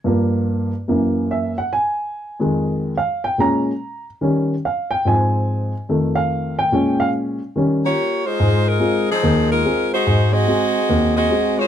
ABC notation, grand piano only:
X:1
M:4/4
L:1/8
Q:"Swing" 1/4=144
K:Ab
V:1 name="Grand piano"
z6 _f _g | a3 z3 f g | b3 z3 f g | a3 z2 f2 g- |
g f z6 | z8 | z8 |]
V:2 name="Grand piano" clef=bass
[G,,F,B,]3 z [_G,,_F,B,]3 z | z3 [F,,E,A,]3 z2 | [B,,A,D] z3 [E,G,D] z3 | [A,,F,C]3 z [F,,E,=A,]4 |
[B,,A,D]3 z [E,G,D] z3 | A,,2 [A,CF] z [E,,E,]2 [A,CF] z | A,,2 [A,C_G] z E,,2 [A,CG] z |]